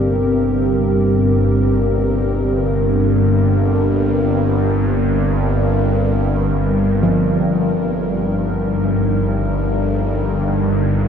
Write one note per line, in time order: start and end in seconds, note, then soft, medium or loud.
0.00 11.08 G1 medium
0.00 11.08 G2 medium
0.00 3.43 D3 medium
0.00 9.67 C4 medium
0.00 8.56 G4 medium
0.00 11.08 A#4 medium
5.82 11.08 G3 medium
7.03 11.08 F3 medium
7.88 11.08 D#4 medium